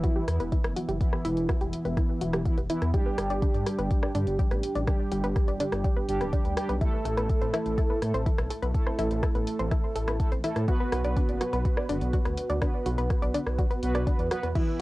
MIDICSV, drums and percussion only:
0, 0, Header, 1, 2, 480
1, 0, Start_track
1, 0, Tempo, 483871
1, 997, Time_signature, 4, 2, 24, 8
1, 14696, End_track
2, 0, Start_track
2, 0, Title_t, "Drums"
2, 36, Note_on_c, 9, 36, 115
2, 37, Note_on_c, 9, 42, 46
2, 135, Note_off_c, 9, 36, 0
2, 136, Note_off_c, 9, 42, 0
2, 276, Note_on_c, 9, 37, 55
2, 276, Note_on_c, 9, 46, 108
2, 375, Note_off_c, 9, 37, 0
2, 375, Note_off_c, 9, 46, 0
2, 396, Note_on_c, 9, 42, 34
2, 496, Note_off_c, 9, 42, 0
2, 516, Note_on_c, 9, 36, 109
2, 516, Note_on_c, 9, 42, 43
2, 616, Note_off_c, 9, 36, 0
2, 616, Note_off_c, 9, 42, 0
2, 637, Note_on_c, 9, 37, 76
2, 637, Note_on_c, 9, 42, 32
2, 736, Note_off_c, 9, 37, 0
2, 736, Note_off_c, 9, 42, 0
2, 756, Note_on_c, 9, 46, 106
2, 856, Note_off_c, 9, 46, 0
2, 877, Note_on_c, 9, 42, 34
2, 976, Note_off_c, 9, 42, 0
2, 996, Note_on_c, 9, 36, 120
2, 997, Note_on_c, 9, 42, 45
2, 1096, Note_off_c, 9, 36, 0
2, 1096, Note_off_c, 9, 42, 0
2, 1117, Note_on_c, 9, 37, 51
2, 1216, Note_off_c, 9, 37, 0
2, 1237, Note_on_c, 9, 46, 102
2, 1336, Note_off_c, 9, 46, 0
2, 1357, Note_on_c, 9, 42, 33
2, 1456, Note_off_c, 9, 42, 0
2, 1476, Note_on_c, 9, 36, 117
2, 1477, Note_on_c, 9, 37, 75
2, 1477, Note_on_c, 9, 42, 43
2, 1576, Note_off_c, 9, 36, 0
2, 1576, Note_off_c, 9, 37, 0
2, 1576, Note_off_c, 9, 42, 0
2, 1597, Note_on_c, 9, 42, 28
2, 1696, Note_off_c, 9, 42, 0
2, 1717, Note_on_c, 9, 46, 105
2, 1816, Note_off_c, 9, 46, 0
2, 1838, Note_on_c, 9, 42, 32
2, 1937, Note_off_c, 9, 42, 0
2, 1956, Note_on_c, 9, 36, 125
2, 1957, Note_on_c, 9, 37, 52
2, 1957, Note_on_c, 9, 42, 43
2, 2056, Note_off_c, 9, 36, 0
2, 2056, Note_off_c, 9, 37, 0
2, 2056, Note_off_c, 9, 42, 0
2, 2196, Note_on_c, 9, 46, 112
2, 2296, Note_off_c, 9, 46, 0
2, 2317, Note_on_c, 9, 37, 73
2, 2317, Note_on_c, 9, 42, 33
2, 2416, Note_off_c, 9, 37, 0
2, 2416, Note_off_c, 9, 42, 0
2, 2437, Note_on_c, 9, 36, 108
2, 2437, Note_on_c, 9, 42, 45
2, 2536, Note_off_c, 9, 36, 0
2, 2536, Note_off_c, 9, 42, 0
2, 2557, Note_on_c, 9, 42, 29
2, 2656, Note_off_c, 9, 42, 0
2, 2677, Note_on_c, 9, 46, 107
2, 2776, Note_off_c, 9, 46, 0
2, 2797, Note_on_c, 9, 37, 49
2, 2797, Note_on_c, 9, 42, 33
2, 2896, Note_off_c, 9, 37, 0
2, 2896, Note_off_c, 9, 42, 0
2, 2917, Note_on_c, 9, 36, 125
2, 2917, Note_on_c, 9, 42, 41
2, 3016, Note_off_c, 9, 36, 0
2, 3016, Note_off_c, 9, 42, 0
2, 3157, Note_on_c, 9, 37, 73
2, 3157, Note_on_c, 9, 46, 109
2, 3256, Note_off_c, 9, 37, 0
2, 3256, Note_off_c, 9, 46, 0
2, 3277, Note_on_c, 9, 42, 32
2, 3377, Note_off_c, 9, 42, 0
2, 3397, Note_on_c, 9, 36, 127
2, 3397, Note_on_c, 9, 42, 42
2, 3496, Note_off_c, 9, 36, 0
2, 3496, Note_off_c, 9, 42, 0
2, 3518, Note_on_c, 9, 42, 28
2, 3617, Note_off_c, 9, 42, 0
2, 3637, Note_on_c, 9, 37, 50
2, 3637, Note_on_c, 9, 46, 105
2, 3736, Note_off_c, 9, 37, 0
2, 3736, Note_off_c, 9, 46, 0
2, 3757, Note_on_c, 9, 42, 31
2, 3857, Note_off_c, 9, 42, 0
2, 3877, Note_on_c, 9, 36, 122
2, 3877, Note_on_c, 9, 42, 43
2, 3976, Note_off_c, 9, 36, 0
2, 3976, Note_off_c, 9, 42, 0
2, 3997, Note_on_c, 9, 37, 71
2, 4096, Note_off_c, 9, 37, 0
2, 4117, Note_on_c, 9, 46, 114
2, 4216, Note_off_c, 9, 46, 0
2, 4237, Note_on_c, 9, 42, 33
2, 4336, Note_off_c, 9, 42, 0
2, 4357, Note_on_c, 9, 36, 114
2, 4357, Note_on_c, 9, 42, 43
2, 4456, Note_off_c, 9, 36, 0
2, 4456, Note_off_c, 9, 42, 0
2, 4477, Note_on_c, 9, 37, 47
2, 4477, Note_on_c, 9, 42, 28
2, 4576, Note_off_c, 9, 37, 0
2, 4576, Note_off_c, 9, 42, 0
2, 4597, Note_on_c, 9, 46, 112
2, 4696, Note_off_c, 9, 46, 0
2, 4717, Note_on_c, 9, 42, 30
2, 4817, Note_off_c, 9, 42, 0
2, 4837, Note_on_c, 9, 36, 122
2, 4837, Note_on_c, 9, 37, 71
2, 4837, Note_on_c, 9, 42, 39
2, 4936, Note_off_c, 9, 36, 0
2, 4936, Note_off_c, 9, 37, 0
2, 4936, Note_off_c, 9, 42, 0
2, 5077, Note_on_c, 9, 46, 103
2, 5176, Note_off_c, 9, 46, 0
2, 5197, Note_on_c, 9, 42, 32
2, 5296, Note_off_c, 9, 42, 0
2, 5317, Note_on_c, 9, 36, 122
2, 5317, Note_on_c, 9, 37, 51
2, 5317, Note_on_c, 9, 42, 43
2, 5416, Note_off_c, 9, 36, 0
2, 5416, Note_off_c, 9, 37, 0
2, 5416, Note_off_c, 9, 42, 0
2, 5437, Note_on_c, 9, 42, 27
2, 5536, Note_off_c, 9, 42, 0
2, 5556, Note_on_c, 9, 46, 107
2, 5656, Note_off_c, 9, 46, 0
2, 5677, Note_on_c, 9, 37, 73
2, 5677, Note_on_c, 9, 42, 29
2, 5776, Note_off_c, 9, 37, 0
2, 5776, Note_off_c, 9, 42, 0
2, 5797, Note_on_c, 9, 36, 127
2, 5797, Note_on_c, 9, 42, 42
2, 5896, Note_off_c, 9, 36, 0
2, 5896, Note_off_c, 9, 42, 0
2, 6037, Note_on_c, 9, 46, 108
2, 6136, Note_off_c, 9, 46, 0
2, 6157, Note_on_c, 9, 37, 47
2, 6157, Note_on_c, 9, 42, 30
2, 6256, Note_off_c, 9, 37, 0
2, 6256, Note_off_c, 9, 42, 0
2, 6276, Note_on_c, 9, 36, 108
2, 6276, Note_on_c, 9, 42, 40
2, 6375, Note_off_c, 9, 42, 0
2, 6376, Note_off_c, 9, 36, 0
2, 6396, Note_on_c, 9, 42, 29
2, 6495, Note_off_c, 9, 42, 0
2, 6516, Note_on_c, 9, 37, 78
2, 6516, Note_on_c, 9, 46, 107
2, 6615, Note_off_c, 9, 37, 0
2, 6615, Note_off_c, 9, 46, 0
2, 6636, Note_on_c, 9, 42, 30
2, 6736, Note_off_c, 9, 42, 0
2, 6756, Note_on_c, 9, 36, 117
2, 6756, Note_on_c, 9, 42, 41
2, 6855, Note_off_c, 9, 36, 0
2, 6855, Note_off_c, 9, 42, 0
2, 6996, Note_on_c, 9, 46, 104
2, 7095, Note_off_c, 9, 46, 0
2, 7116, Note_on_c, 9, 37, 49
2, 7116, Note_on_c, 9, 42, 34
2, 7216, Note_off_c, 9, 37, 0
2, 7216, Note_off_c, 9, 42, 0
2, 7236, Note_on_c, 9, 36, 119
2, 7236, Note_on_c, 9, 42, 41
2, 7335, Note_off_c, 9, 36, 0
2, 7335, Note_off_c, 9, 42, 0
2, 7357, Note_on_c, 9, 42, 28
2, 7456, Note_off_c, 9, 42, 0
2, 7477, Note_on_c, 9, 37, 76
2, 7477, Note_on_c, 9, 46, 98
2, 7576, Note_off_c, 9, 37, 0
2, 7576, Note_off_c, 9, 46, 0
2, 7597, Note_on_c, 9, 42, 30
2, 7696, Note_off_c, 9, 42, 0
2, 7716, Note_on_c, 9, 36, 116
2, 7717, Note_on_c, 9, 42, 43
2, 7815, Note_off_c, 9, 36, 0
2, 7816, Note_off_c, 9, 42, 0
2, 7957, Note_on_c, 9, 37, 52
2, 7957, Note_on_c, 9, 46, 107
2, 8056, Note_off_c, 9, 37, 0
2, 8056, Note_off_c, 9, 46, 0
2, 8077, Note_on_c, 9, 42, 32
2, 8177, Note_off_c, 9, 42, 0
2, 8196, Note_on_c, 9, 36, 112
2, 8197, Note_on_c, 9, 42, 43
2, 8295, Note_off_c, 9, 36, 0
2, 8296, Note_off_c, 9, 42, 0
2, 8317, Note_on_c, 9, 37, 74
2, 8317, Note_on_c, 9, 42, 29
2, 8416, Note_off_c, 9, 37, 0
2, 8416, Note_off_c, 9, 42, 0
2, 8437, Note_on_c, 9, 46, 110
2, 8536, Note_off_c, 9, 46, 0
2, 8557, Note_on_c, 9, 42, 30
2, 8656, Note_off_c, 9, 42, 0
2, 8676, Note_on_c, 9, 36, 107
2, 8677, Note_on_c, 9, 42, 43
2, 8776, Note_off_c, 9, 36, 0
2, 8776, Note_off_c, 9, 42, 0
2, 8797, Note_on_c, 9, 37, 56
2, 8896, Note_off_c, 9, 37, 0
2, 8917, Note_on_c, 9, 46, 98
2, 9016, Note_off_c, 9, 46, 0
2, 9037, Note_on_c, 9, 42, 34
2, 9136, Note_off_c, 9, 42, 0
2, 9157, Note_on_c, 9, 36, 114
2, 9157, Note_on_c, 9, 37, 77
2, 9157, Note_on_c, 9, 42, 44
2, 9256, Note_off_c, 9, 36, 0
2, 9256, Note_off_c, 9, 37, 0
2, 9256, Note_off_c, 9, 42, 0
2, 9277, Note_on_c, 9, 42, 28
2, 9377, Note_off_c, 9, 42, 0
2, 9397, Note_on_c, 9, 46, 96
2, 9496, Note_off_c, 9, 46, 0
2, 9517, Note_on_c, 9, 42, 31
2, 9617, Note_off_c, 9, 42, 0
2, 9637, Note_on_c, 9, 36, 115
2, 9637, Note_on_c, 9, 37, 53
2, 9637, Note_on_c, 9, 42, 43
2, 9736, Note_off_c, 9, 36, 0
2, 9736, Note_off_c, 9, 37, 0
2, 9736, Note_off_c, 9, 42, 0
2, 9877, Note_on_c, 9, 46, 99
2, 9976, Note_off_c, 9, 46, 0
2, 9997, Note_on_c, 9, 37, 77
2, 9997, Note_on_c, 9, 42, 31
2, 10096, Note_off_c, 9, 37, 0
2, 10096, Note_off_c, 9, 42, 0
2, 10117, Note_on_c, 9, 36, 102
2, 10117, Note_on_c, 9, 42, 44
2, 10216, Note_off_c, 9, 36, 0
2, 10216, Note_off_c, 9, 42, 0
2, 10237, Note_on_c, 9, 42, 31
2, 10336, Note_off_c, 9, 42, 0
2, 10357, Note_on_c, 9, 46, 102
2, 10456, Note_off_c, 9, 46, 0
2, 10477, Note_on_c, 9, 37, 53
2, 10477, Note_on_c, 9, 42, 34
2, 10576, Note_off_c, 9, 37, 0
2, 10576, Note_off_c, 9, 42, 0
2, 10597, Note_on_c, 9, 36, 112
2, 10597, Note_on_c, 9, 42, 43
2, 10696, Note_off_c, 9, 36, 0
2, 10696, Note_off_c, 9, 42, 0
2, 10837, Note_on_c, 9, 37, 83
2, 10837, Note_on_c, 9, 46, 95
2, 10936, Note_off_c, 9, 37, 0
2, 10936, Note_off_c, 9, 46, 0
2, 10957, Note_on_c, 9, 42, 32
2, 11056, Note_off_c, 9, 42, 0
2, 11077, Note_on_c, 9, 36, 116
2, 11077, Note_on_c, 9, 42, 46
2, 11176, Note_off_c, 9, 36, 0
2, 11176, Note_off_c, 9, 42, 0
2, 11197, Note_on_c, 9, 42, 30
2, 11296, Note_off_c, 9, 42, 0
2, 11317, Note_on_c, 9, 37, 53
2, 11317, Note_on_c, 9, 46, 99
2, 11416, Note_off_c, 9, 37, 0
2, 11416, Note_off_c, 9, 46, 0
2, 11437, Note_on_c, 9, 42, 34
2, 11537, Note_off_c, 9, 42, 0
2, 11557, Note_on_c, 9, 36, 109
2, 11557, Note_on_c, 9, 42, 45
2, 11656, Note_off_c, 9, 36, 0
2, 11656, Note_off_c, 9, 42, 0
2, 11677, Note_on_c, 9, 37, 77
2, 11776, Note_off_c, 9, 37, 0
2, 11797, Note_on_c, 9, 46, 107
2, 11896, Note_off_c, 9, 46, 0
2, 11917, Note_on_c, 9, 42, 33
2, 12017, Note_off_c, 9, 42, 0
2, 12037, Note_on_c, 9, 36, 103
2, 12037, Note_on_c, 9, 42, 47
2, 12136, Note_off_c, 9, 36, 0
2, 12136, Note_off_c, 9, 42, 0
2, 12157, Note_on_c, 9, 37, 54
2, 12157, Note_on_c, 9, 42, 29
2, 12256, Note_off_c, 9, 37, 0
2, 12256, Note_off_c, 9, 42, 0
2, 12277, Note_on_c, 9, 46, 105
2, 12376, Note_off_c, 9, 46, 0
2, 12397, Note_on_c, 9, 42, 33
2, 12496, Note_off_c, 9, 42, 0
2, 12517, Note_on_c, 9, 36, 108
2, 12517, Note_on_c, 9, 37, 80
2, 12517, Note_on_c, 9, 42, 47
2, 12616, Note_off_c, 9, 36, 0
2, 12616, Note_off_c, 9, 37, 0
2, 12616, Note_off_c, 9, 42, 0
2, 12756, Note_on_c, 9, 46, 99
2, 12856, Note_off_c, 9, 46, 0
2, 12877, Note_on_c, 9, 42, 35
2, 12976, Note_off_c, 9, 42, 0
2, 12996, Note_on_c, 9, 37, 52
2, 12996, Note_on_c, 9, 42, 45
2, 12997, Note_on_c, 9, 36, 114
2, 13095, Note_off_c, 9, 37, 0
2, 13095, Note_off_c, 9, 42, 0
2, 13096, Note_off_c, 9, 36, 0
2, 13117, Note_on_c, 9, 42, 29
2, 13216, Note_off_c, 9, 42, 0
2, 13236, Note_on_c, 9, 46, 98
2, 13336, Note_off_c, 9, 46, 0
2, 13357, Note_on_c, 9, 37, 76
2, 13357, Note_on_c, 9, 42, 35
2, 13456, Note_off_c, 9, 37, 0
2, 13456, Note_off_c, 9, 42, 0
2, 13476, Note_on_c, 9, 42, 47
2, 13477, Note_on_c, 9, 36, 109
2, 13576, Note_off_c, 9, 36, 0
2, 13576, Note_off_c, 9, 42, 0
2, 13597, Note_on_c, 9, 42, 31
2, 13696, Note_off_c, 9, 42, 0
2, 13717, Note_on_c, 9, 46, 103
2, 13816, Note_off_c, 9, 46, 0
2, 13837, Note_on_c, 9, 37, 54
2, 13837, Note_on_c, 9, 42, 36
2, 13936, Note_off_c, 9, 37, 0
2, 13936, Note_off_c, 9, 42, 0
2, 13957, Note_on_c, 9, 36, 110
2, 13957, Note_on_c, 9, 42, 47
2, 14056, Note_off_c, 9, 36, 0
2, 14056, Note_off_c, 9, 42, 0
2, 14077, Note_on_c, 9, 42, 31
2, 14177, Note_off_c, 9, 42, 0
2, 14197, Note_on_c, 9, 37, 79
2, 14197, Note_on_c, 9, 46, 104
2, 14296, Note_off_c, 9, 37, 0
2, 14296, Note_off_c, 9, 46, 0
2, 14317, Note_on_c, 9, 42, 33
2, 14416, Note_off_c, 9, 42, 0
2, 14437, Note_on_c, 9, 36, 113
2, 14437, Note_on_c, 9, 42, 42
2, 14437, Note_on_c, 9, 49, 77
2, 14536, Note_off_c, 9, 36, 0
2, 14536, Note_off_c, 9, 42, 0
2, 14536, Note_off_c, 9, 49, 0
2, 14696, End_track
0, 0, End_of_file